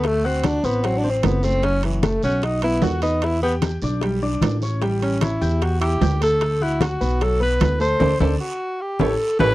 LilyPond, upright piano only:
\new Staff \with { instrumentName = "Upright piano" } { \time 4/4 \key d \mixolydian \tempo 4 = 151 <a a' a''>8 <fis' fis'' fis'''>4 <c' c'' c'''>8 <fis fis' fis''>8 <c' c'' c'''>4 <a a' a''>8 | <fis fis' fis''>4 <a a' a''>8 <fis' fis'' fis'''>4 <b b' b''>8 <fis' fis'' fis'''>8 <b b' b''>8~ | <b b' b''>8 <g' g'' g'''>4 <d' d'' d'''>8 <g g' g''>8 <d' d'' d'''>4 <cis' cis'' cis'''>8 | <g g' g''>4 <cis' cis'' cis'''>8 <g' g'' g'''>4 <e' e'' e'''>8 <g' g'' g'''>8 <a a' a''>8~ |
<a a' a''>8 <fis' fis'' fis'''>4 <b b' b''>8 <fis fis' fis''>8 <b b' b''>4 <a a' a''>8 | <a' c'' d''>8 <a' c'' d''>8 r4. <g' a' cis''>8 r8 <g' a' cis''>8 | }